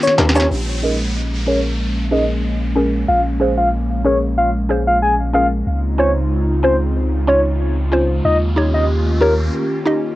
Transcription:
Already playing: analog synth pad D#3 A#3 C#4 F4 G4
0.02 soft synth lead C#5, closed hi-hat, shaker
0.07 snare
0.18 sub bass D#2, synth pluck G4 A#4, snare, closed hi-hat, high timbale
0.29 snare
0.35 synth pluck C#4 D#4 G4 C#5, soft synth lead C#5, high timbale, shaker
0.40 snare
0.50 sub bass A#1, analog synth pad G#3 A#3 C#4, downlifter
0.82 synth pluck C#4 G#4 A#4, soft synth lead D#5
1.47 synth pluck C#4 G#4 A#4, soft synth lead C#5
2.11 synth pluck C#4 G#4 A#4, soft synth lead D#5
2.75 synth pluck C#4 G#4 A#4
3.08 sub bass A#1, soft synth lead F5
3.40 synth pluck C#4 G#4 C5
3.58 soft synth lead F5
4.05 synth pluck C#4 G#4 A#4, soft synth lead C#5
4.38 soft synth lead F5
4.69 synth pluck C#4 G#4 C5
4.87 soft synth lead F5
5.02 soft synth lead G#5
5.34 synth pluck C#4 G#4 A#4, soft synth lead F5
5.66 sub bass C#2, analog synth pad C#3 C4 D#4 F4, riser
5.98 synth pluck C#4 F4 C5, soft synth lead C#5
6.63 synth pluck C#4 F4 C5, soft synth lead C5
7.27 synth pluck C#4 F4 C#5, soft synth lead C#5
7.92 synth pluck C#4 F4 C5
8.25 sub bass D#2, analog synth pad D#3 A#3 C#4 G4, soft synth lead D#5
8.56 synth pluck D#4 G4 C#5
8.74 soft synth lead D#5
9.21 synth pluck D#4 G4 C#5, soft synth lead A#4
9.85 synth pluck D#4 G4 D#5

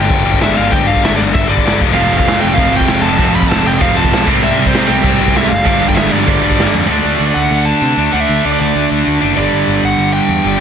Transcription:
Already playing: distorted electric guitar G2 D3 G3, lead electric guitar G5
0.10 picked electric bass G1, kick, crash
0.23 picked electric bass G1, distorted electric guitar G2 D3 G3, crash
0.34 kick
0.39 picked electric bass G1, distorted electric guitar G2 D3 G3, lead electric guitar E5, snare, crash
0.57 picked electric bass G1, lead electric guitar F5, crash
0.71 picked electric bass G1, distorted electric guitar G2 D3 G3, lead electric guitar G5, kick, crash
0.87 picked electric bass G1, lead electric guitar F5, crash
0.96 kick
1.04 picked electric bass G1, lead electric guitar E5, snare, crash
1.17 picked electric bass G1, lead electric guitar D5, crash
1.34 picked electric bass G1, lead electric guitar E5, kick, crash
1.48 picked electric bass G1, distorted electric guitar G2 D3 G3, lead electric guitar D5, crash
1.58 kick
1.65 picked electric bass G1, distorted electric guitar G2 D3 G3, snare, crash
1.81 picked electric bass F1, distorted electric guitar F2 C3 F3, kick, crash
1.94 picked electric bass F1, overdriven electric guitar F2 C3, lead electric guitar F5, crash
1.98 overdriven electric guitar F3
2.11 picked electric bass F1, crash
2.17 lead electric guitar F5, kick
2.26 picked electric bass F2, snare, crash
2.41 picked electric bass F1, lead electric guitar G5, crash
2.54 picked electric bass F1, distorted electric guitar F2 C3, lead electric guitar F5, kick, crash
2.59 distorted electric guitar F3
2.71 picked electric bass F1, distorted electric guitar F2 C3 F3, crash
2.76 lead electric guitar G5
2.81 kick
2.87 picked electric bass F1, snare, crash
3.02 picked electric bass F1, distorted electric guitar F2 C3, lead electric guitar A5, crash
3.06 distorted electric guitar F3
3.17 picked electric bass F1, overdriven electric guitar F2 C3 F3, lead electric guitar A5, kick, crash
3.34 picked electric bass F1, lead electric guitar B5, crash
3.42 kick
3.49 picked electric bass F1, lead electric guitar A5, snare, crash
3.65 picked electric bass F1, lead electric guitar G5, crash
3.79 picked electric bass F1, distorted electric guitar F2 C3 F3, lead electric guitar F5, kick, crash
3.95 picked electric bass F1, distorted electric guitar F2 C3 F3, lead electric guitar A5, crash
4.04 kick
4.11 picked electric bass B1, snare, crash
4.26 picked electric bass C2, distorted electric guitar C3 G3 C4, kick, crash
4.42 picked electric bass C2, lead electric guitar E5, crash
4.58 picked electric bass C2, crash
4.66 lead electric guitar C5, kick
4.74 picked electric bass C3, snare, crash
4.87 picked electric bass C2, overdriven electric guitar G3 C4, lead electric guitar G5, crash
4.91 overdriven electric guitar C3
5.03 picked electric bass C2, distorted electric guitar C3 G3 C4, kick, crash
5.18 picked electric bass C2, distorted electric guitar C3 G3 C4, crash
5.28 kick
5.35 picked electric bass C2, lead electric guitar E5, snare, crash
5.49 picked electric bass F#1, lead electric guitar F5, crash
5.65 picked electric bass G1, distorted electric guitar G2 D3, kick, crash
5.69 distorted electric guitar G3
5.81 picked electric bass G1, crash
5.89 lead electric guitar G5, kick
5.95 picked electric bass G1, lead electric guitar E5, snare, crash
6.11 picked electric bass G1, lead electric guitar D5, crash
6.27 picked electric bass G1, overdriven electric guitar G2 D3 G3, kick, crash
6.43 picked electric bass G1, distorted electric guitar G2 D3 G3, crash
6.51 kick
6.58 picked electric bass G1, distorted electric guitar G2 D3 G3, snare, crash
6.73 picked electric bass F2, crash
6.87 picked electric bass D2, distorted electric guitar D3, lead electric guitar D5
6.91 distorted electric guitar A3 D4
7.04 picked electric bass D2
7.20 picked electric bass D2
7.34 picked electric bass D2, lead electric guitar F#5
7.51 picked electric bass D2
7.65 lead electric guitar A5
7.82 picked electric bass C3
7.97 picked electric bass D2, distorted electric guitar D3 A3 D4
8.11 picked electric bass D2, distorted electric guitar D3 A3, lead electric guitar F#5
8.15 distorted electric guitar D4
8.20 lead electric guitar E5
8.29 picked electric bass D2
8.45 picked electric bass D2, lead electric guitar D5
8.52 lead electric guitar D5
8.59 picked electric bass D2, lead electric guitar D5
8.76 picked electric bass D2
8.91 picked electric bass D2
9.07 picked electric bass D2
9.21 picked electric bass F#1, distorted electric guitar D3 A3 D4
9.36 picked electric bass G1, distorted electric guitar G2 D3, lead electric guitar D5
9.41 distorted electric guitar G3
9.53 picked electric bass G1
9.68 picked electric bass G1
9.83 picked electric bass G1, lead electric guitar F#5
9.98 picked electric bass G1
10.13 lead electric guitar G5
10.29 picked electric bass E2
10.44 picked electric bass G1, distorted electric guitar G2 D3 G3

